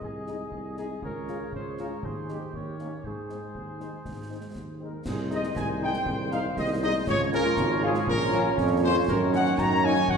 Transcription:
Already playing: woodwind section G#4 D#5
0.01 tuba C2, trumpet section G#4, concert bass drum
0.27 french horn section G#3 D#4, snare
0.52 tuba C2, concert bass drum
0.77 french horn section G#3 D#4, trumpet section G#4, snare
1.02 tuba C#2, woodwind section G#4 C#5, trumpet section A#4, concert bass drum
1.28 french horn section G#3 C#4 F4, snare
1.53 tuba C#2, trumpet section C5, concert bass drum
1.78 french horn section G#3 C#4 F4, trumpet section A#4, snare
2.03 tuba D#2, trumpet section G#4, woodwind section C5, concert bass drum
2.29 french horn section G#3 C4 D#4, trumpet section G4, snare
2.54 tuba D#2, woodwind section A#4 C#5, concert bass drum
2.79 french horn section A#3 C#4 D#4, trumpet section G4, snare
3.04 tuba G#2, trumpet section G#4, woodwind section G#4 C5, concert bass drum
3.30 french horn section G#3 C4 D#4, snare
3.55 tuba D#2, concert bass drum
3.80 french horn section G#3 C4 D#4, snare
4.05 tuba G#2, concert bass drum, snare
4.30 french horn section G#3 C4 D#4
4.55 tuba D#2, concert bass drum, snare
4.81 french horn section G#3 C4 D#4, flute section A#4, trumpet section A#4
5.06 tuba C2, trombone section D#3 G#3, woodwind section D#4 C5, flute section G#4, trumpet section G#4, concert bass drum, snare, crash
5.30 french horn section G#3 D#4, flute section D#5, trumpet section D#5, snare
5.44 snare
5.56 tuba C2, flute section G#5, trumpet section G#5, concert bass drum, snare
5.81 french horn section G#3 D#4, trumpet section G5, flute section G5
5.94 snare
6.06 tuba C2, concert bass drum
6.32 french horn section G#3 D#4, trumpet section F5, flute section F5, snare
6.57 tuba C2, flute section D#5, trumpet section D#5, concert bass drum, snare
6.82 french horn section G#3 D#4, flute section D#5, trumpet section D#5
7.07 tuba C#2, trombone section F3 G#3, woodwind section F4 C#5, flute section C#5, trumpet section C#5, concert bass drum, snare, crash
7.31 french horn section G#3 C#4 F4, flute section A#4, trumpet section A#4, snare
7.45 snare
7.57 tuba G#1, concert bass drum, snare
7.82 french horn section G#3 C#4 F4, flute section G#4, trumpet section G#4
7.95 snare
8.07 tuba A#1, trombone section C#4, trumpet section A#4, flute section A#4, concert bass drum
8.32 french horn section A#3 C#4 F4, snare
8.58 tuba F2, concert bass drum, snare
8.83 french horn section A#3 C#4 F4, trumpet section C5, flute section C5
9.08 tuba F#2, trombone section D#3 C#4, woodwind section D#4 C#5, flute section A#4, trumpet section A#4, concert bass drum, snare, crash
9.33 french horn section A#3 C#4 D#4, flute section F#5, trumpet section F#5, snare
9.45 snare
9.58 tuba F#2, trombone section D#3 C#4, flute section A#5, trumpet section A#5, concert bass drum, snare
9.83 french horn section A#3 C#4 D#4, flute section G#5, trumpet section G#5
9.96 snare
10.08 tuba F#2, trombone section D#3 C#4, flute section F#5, trumpet section F#5, concert bass drum

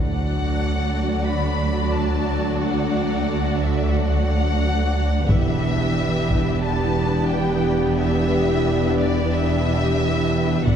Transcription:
Already playing: double bass section D2, cello section D2, viola section F#3 D4, french horn section D4 A4, violin section F#4 D5 F#5
1.25 violin section B5
1.91 violin section A5
2.61 violin section F#5
3.61 violin section E5
3.95 violin section F#5
5.29 double bass section E1, cello section E2, viola section B3 D4, french horn section D4 G4, violin section G4 B4 E5, taiko
6.30 taiko
6.63 violin section A5
7.30 violin section G5
7.97 violin section E5
8.99 violin section D5
9.34 violin section E5
10.66 double bass section B1, cello section B2, viola section B3 D4, french horn section D4 F#4, violin section F#4 D5 F#5, taiko

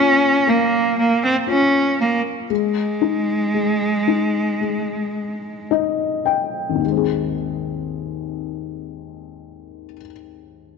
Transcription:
Already playing: felt piano A#3 F4, cello C#4
0.47 felt piano A#3, cello A#3
0.99 cello A#3
1.24 cello C4
1.47 cello C#4, felt piano F4
2.01 cello A#3
2.50 felt piano G#3, cello G#3
3.01 felt piano D#4
3.54 felt piano G#3
4.08 felt piano D#4
4.61 felt piano G#3
5.71 felt piano D#4 D#5
6.25 felt piano G5
6.69 felt piano G#1
6.75 felt piano D#2
6.80 felt piano D#3
6.86 felt piano G#3
6.91 felt piano C4
6.97 felt piano G#4

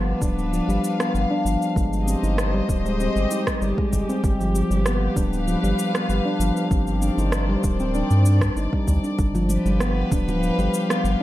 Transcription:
Already playing: sub bass G1, string section D4
0.00 string section B4 F5
0.21 sub bass D1, handpan D4, kick, cabasa
0.39 cabasa
0.53 handpan F3, cabasa
0.68 sub bass G1, handpan G3, cabasa
0.84 cabasa
1.00 handpan B3, cross-stick, cabasa
1.14 sub bass G1, cabasa
1.31 handpan D4
1.45 sub bass G1, handpan F3, cabasa
1.62 cabasa
1.76 sub bass G1, handpan G#3, kick, cabasa
1.93 string section G4, cabasa
2.02 string section C5 D#5
2.07 handpan C4, cabasa
2.23 sub bass G1, handpan D#4, cabasa
2.38 cross-stick, cabasa
2.54 handpan G3
2.69 sub bass D1, kick, cabasa
2.85 handpan G#3, cabasa
3.00 handpan C4, cabasa
3.16 sub bass G1, cabasa
3.31 handpan D#4, cabasa
3.47 kick, cross-stick, cabasa
3.61 sub bass G1, handpan G3, cabasa
3.78 handpan G#3, kick
3.93 sub bass G1, kick, cabasa
4.09 handpan C4, cabasa
4.23 sub bass G1, kick, cabasa
4.40 handpan F3, cabasa
4.55 cabasa
4.70 sub bass G1, handpan G3, string section B4, cabasa
4.81 string section F5
4.86 handpan B3, cross-stick, cabasa
5.16 sub bass D1, handpan D4, kick, cabasa
5.33 cabasa
5.47 handpan F3, cabasa
5.63 sub bass G1, handpan G3, cabasa
5.79 cabasa
5.94 handpan B3, cross-stick, cabasa
6.09 sub bass G1, cabasa
6.25 handpan D4
6.39 sub bass G1, handpan F3, cabasa
6.57 cabasa
6.70 sub bass G1, string section D#3, handpan C4, kick, cabasa
6.79 string section C5
6.87 cabasa
7.02 handpan D4, string section D5, cabasa
7.18 sub bass G1, handpan D#4, cabasa
7.32 cross-stick, cabasa
7.49 handpan G3
7.63 sub bass D1, kick, cabasa
7.80 handpan C4, cabasa
7.95 handpan D4, cabasa
8.10 sub bass G2, cabasa
8.25 handpan D4, cabasa
8.41 kick, cross-stick, cabasa
8.56 sub bass G1, handpan D#4, cabasa
8.73 handpan G3, kick
8.87 sub bass D2, kick, cabasa
9.04 handpan D4, cabasa
9.18 sub bass G1, kick, high bongo, cabasa
9.35 handpan F3, high conga, cabasa
9.46 string section G4, high conga, cabasa
9.53 string section B4
9.65 sub bass G1, handpan G3, high conga, cabasa
9.71 string section F5
9.80 handpan B3, cross-stick, cabasa
10.11 sub bass D1, handpan D4, kick, low conga, cabasa
10.28 handpan F3, low conga, cabasa
10.43 handpan F3, cabasa
10.58 sub bass G1, handpan G3, high bongo, cabasa
10.74 cabasa
10.90 handpan B3, cross-stick, cabasa
11.04 sub bass G1, cabasa

